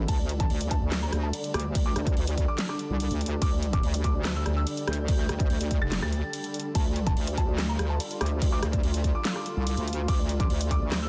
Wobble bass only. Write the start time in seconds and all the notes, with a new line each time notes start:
0.08 D2
0.50 D2
0.82 D2
1.13 D2
1.54 D2
1.96 D2
2.17 D2
2.90 C2
3.11 D2
3.42 D2
3.83 D2
4.15 D2
4.46 D2
4.88 D2
5.29 D2
5.50 D2
5.82 F1
6.02 D2
6.75 D2
7.17 D2
7.48 D2
7.79 D2
8.21 D2
8.63 D2
8.83 D2
9.57 C2
9.77 D2
10.50 D2
10.82 D2